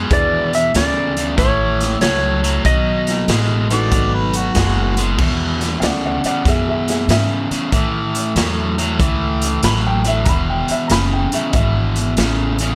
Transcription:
0.10 E2 B2 B3 D4 E4 G#4 D5, kick, closed hi-hat
0.53 E5, closed hi-hat
0.74 D2 E2 C#3 D5, snare, closed hi-hat
1.17 E2 C#3, closed hi-hat
1.37 A1 A2 E3 C#5, kick, snare, closed hi-hat
1.80 snare, closed hi-hat
2.01 C#2 A2 F#3 C#5, snare, closed hi-hat
2.43 A2 F#3, closed hi-hat
2.64 B1 B2 F#3 D#5, kick, closed hi-hat
3.07 snare, closed hi-hat
3.28 A1 B2 G#3, snare, closed hi-hat
3.70 B2 G#3 A3 B3 D#4 F#4 D5, closed hi-hat
3.91 G#1 B2 F#3, kick, closed hi-hat
4.14 B4
4.33 F#4, closed hi-hat
4.55 F#1 B2 G#3, kick, snare, closed hi-hat
4.97 B2 G#3, closed hi-hat
5.18 E2 B2, kick, crash
5.61 snare, closed hi-hat
5.80 D2 E2 C#3 D5 F5, snare, closed hi-hat
5.84 F#5
6.06 D5 F#5
6.24 E2 C#3 D5 F#5, muted upright bass stroke, closed hi-hat
6.45 E2 F#2 B2 G#4 E5, kick, snare, closed hi-hat
6.69 G#4 E5
6.88 G#4 E5, snare, closed hi-hat
7.08 E2 G#2 C#3 E5, snare, closed hi-hat
7.51 E2 C#3, muted upright bass stroke, closed hi-hat
7.72 A2 E3, kick, closed hi-hat
8.15 closed hi-hat
8.36 E2 A2 F#3, snare, closed hi-hat
8.78 A2 F#3, closed hi-hat
8.99 C#2 A2 E3, kick, closed hi-hat
9.42 closed hi-hat
9.63 A1 A2 F#3 B5, snare, closed hi-hat
9.87 G5
10.04 A2 F#3 E5, closed hi-hat
10.25 E1 E2 B2 A#5, kick, closed hi-hat
10.29 B5
10.50 G5
10.68 E5, muted upright bass stroke, closed hi-hat
10.88 F#1 E2 C#3 A#5, snare, closed hi-hat
10.92 B5
11.13 G5
11.32 E2 C#3 E5, muted upright bass stroke, closed hi-hat
11.51 G#1 E2 B2 D#5, kick, closed hi-hat
11.55 E5
11.96 closed hi-hat
12.17 A1 E2 C#3, snare, closed hi-hat
12.59 E2 C#3, closed hi-hat

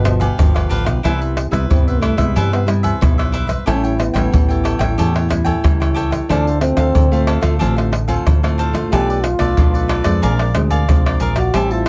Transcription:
Already playing: G1 G2 B2
0.04 F3 B3 D4, muted cavaquinho stroke, pandeiro, tamborim, shaker, surdo
0.20 G4 B4 F5, pandeiro, low agogo, shaker, surdo
0.38 G1 D3 F3 B3 D4, pandeiro, tamborim, high agogo, shaker, surdo
0.54 G1 G4 B4 F5, pandeiro, tamborim, high agogo, shaker
0.69 A1 D4 G4 B4 F5, pandeiro, shaker
0.85 B1 G4 F5, pandeiro, tamborim, shaker, surdo
1.03 C2 C3 G3 B3 E4 B4 C5 E5, pandeiro, tamborim, low agogo, shaker, surdo
1.21 B4 C5 E5, pandeiro, shaker
1.37 muted cavaquinho stroke, pandeiro, tamborim, shaker
1.51 C2 G3 B3 E4 B4 C5 E5, pandeiro, tamborim, shaker, surdo
1.69 C2 G2 G3 B3 C4 E4, pandeiro, high agogo, shaker, surdo
1.87 B3 B4 C5 E5, pandeiro, shaker
2.00 A3 E4 B4 C5 E5, pandeiro, tamborim, high agogo, shaker
2.16 C2 G3 G#3 B3 E4 B4 C5 E5, pandeiro, tamborim, shaker, surdo
2.35 G2 C3 G3 E4 B4 C5 E5, pandeiro, low agogo, shaker, surdo
2.52 B3 B4 C5 E5, pandeiro, tamborim, shaker
2.66 G3 B3 E4, muted cavaquinho stroke, pandeiro, tamborim
2.83 B4 C5 E5, pandeiro, low agogo, shaker, surdo
3.01 B1 G2 G3 B3 E4, pandeiro, tamborim, high agogo, shaker, surdo
3.18 B4 C5 E5, pandeiro, tamborim, high agogo, shaker
3.32 E4 B4 C5 E5, pandeiro
3.47 B4 C5 E5, pandeiro, tamborim, shaker, surdo
3.66 A1 A2 G3 C#4 E4 G4 A4 C#5 G5, pandeiro, tamborim, low agogo, shaker, surdo
3.84 A4 C#5 G5, pandeiro, shaker
3.98 B3, muted cavaquinho stroke, pandeiro, tamborim, shaker
4.14 A1 G3 C#4 E4 A4 C#5 G5, pandeiro, tamborim, shaker, surdo
4.32 A1 E3, pandeiro, high agogo, shaker, surdo
4.49 A4 C#5 G5, pandeiro, shaker
4.64 G4 A4 C#5 G5, pandeiro, tamborim, high agogo, shaker
4.79 A1 G3 C#4 E4 A4 C#5 G5, pandeiro, tamborim, shaker, surdo
4.98 E2 A2 G4 A4 C#5 G5, pandeiro, low agogo, shaker, surdo
5.14 A4 C#5 G5, pandeiro, tamborim, shaker
5.29 G3 C#4 E4, muted cavaquinho stroke, pandeiro, tamborim, shaker, surdo
5.45 A4 C#5 G5, pandeiro, low agogo, shaker, surdo
5.64 C#2 E3 G3 C#4 E4, pandeiro, tamborim, high agogo, shaker, surdo
5.80 A4 C#5 G5, pandeiro, tamborim, high agogo, shaker
5.94 G4 A4 C#5 G5, pandeiro, shaker
6.11 A4 C#5 G5, pandeiro, tamborim, shaker, surdo
6.29 D2 D3 A3 C4 D4 F4 A4 C5 F5, pandeiro, tamborim, low agogo, shaker, surdo
6.47 A4 C5 F5, pandeiro, shaker
6.61 A3 C4 F4, muted cavaquinho stroke, pandeiro, tamborim
6.77 D2 A4 C5 F5, pandeiro, tamborim, shaker, surdo
6.95 D2 A2, pandeiro, high agogo, shaker, surdo
7.11 A3 C4 F4 A4 C5 F5, pandeiro, shaker
7.27 D4 A4 C5 F5, pandeiro, tamborim, high agogo
7.41 D2 A3 C4 F4 A4 C5 F5, pandeiro, tamborim, shaker, surdo
7.59 A1 D3 A3 C4 D4 F4 A4 C5 F5, pandeiro, low agogo, shaker, surdo
7.77 A4 C5 F5, pandeiro, tamborim, shaker
7.92 muted cavaquinho stroke, pandeiro, tamborim
8.08 A3 C4 F4 A4 C5 F5, pandeiro, low agogo, shaker, surdo
8.26 D2 A2, pandeiro, tamborim, high agogo, shaker, surdo
8.43 A3 C4 F4 A4 C5 F5, pandeiro, tamborim, high agogo, shaker
8.58 D4 A4 C5 F5, pandeiro, shaker
8.73 A3 D4 F4 A4 C5 F5, pandeiro, tamborim, shaker, surdo
8.91 B1 B2 F4 G4 A4 B4 D5, pandeiro, tamborim, low agogo, shaker, surdo
9.09 A4 B4 D5, pandeiro, shaker
9.24 F4, muted cavaquinho stroke, pandeiro, tamborim
9.39 B1 A3 D4 F4 A4 B4 D5, pandeiro, tamborim, shaker, surdo
9.57 B1 B2 A3 D4 F4, pandeiro, high agogo, shaker, surdo
9.74 A4 B4 D5, pandeiro, shaker
9.88 F4 A4 B4 D5, pandeiro, tamborim, high agogo, shaker
10.04 F2 G#3 C4 D4 A4 B4 D5, pandeiro, tamborim, shaker, surdo
10.22 A#1 A#2 G#4 A#4 D5 F5, pandeiro, low agogo, shaker, surdo
10.39 A#4 D5 F5, pandeiro, tamborim, shaker
10.54 D2 G#3 C4 D4, muted cavaquinho stroke, pandeiro, tamborim, shaker, surdo
10.70 A#4 D5 F5, pandeiro, low agogo, shaker, surdo
10.88 C2 F3 G#3 C4 D4, pandeiro, tamborim, high agogo, shaker, surdo
11.06 A#4 D5 F5, pandeiro, tamborim, high agogo, shaker
11.20 A#1 G#4 A#4 D5 F5, pandeiro, shaker
11.36 F#4 A#4 D5 F5, pandeiro, tamborim, shaker, surdo
11.54 A1 A2 G3 C4 E4 G4 C5 E5 A5, pandeiro, tamborim, low agogo, shaker, surdo
11.71 F4 C5 E5 A5, pandeiro, shaker
11.86 muted cavaquinho stroke

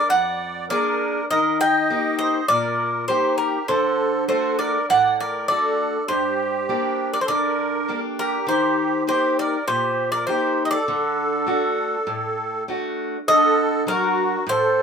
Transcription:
0.09 F2 D5 F#5
0.69 A#3 D4 G#4 A#4 D5
1.30 D#3 A#4 D#5
1.61 D#5 G5
1.90 A#3 D#4 G4
2.19 C5 D#5
2.48 A#2 A#4 D5
3.08 A#3 D#4 G4 C5
3.38 G4 A#4
3.68 D3 A4 C5
4.28 A3 D4 F#4 A4 C5
4.58 A#4 D5
4.88 A2 D5 F#5
5.19 A#4 D5
5.48 A3 D4 F#4 A4 D5
6.07 G2 G4 C5
6.69 A#3 D4 G4
7.14 A#4 D5
7.21 A4 C5
7.28 D3 A#4 D5
7.88 A#3 D4 G4
8.19 G4 A#4
8.47 D#3 G4 C5
9.07 A#3 D#4 G4 C5
9.39 A#4 D5
9.68 A#2 G4 C5
10.12 A#4 D5
10.27 A#3 D#4 G4 C5
10.65 C5 D#5
10.71 A4 D5
10.88 D3
11.46 A3 D4 F#4
12.07 A2
12.68 A3 D4 F#4
13.28 D3 A4 D#5
13.87 F#3 D4 F#4 A#4
14.47 A2 A4 C5

